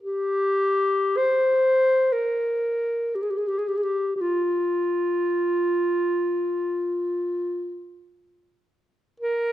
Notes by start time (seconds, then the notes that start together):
0.03 G4
1.17 C5
2.13 A#4
3.15 G4
3.22 G#4
3.30 G4
3.38 G#4
3.48 G4
3.59 G#4
3.68 G4
3.77 G#4
3.83 G4
4.16 G4
4.21 F4
9.20 A#4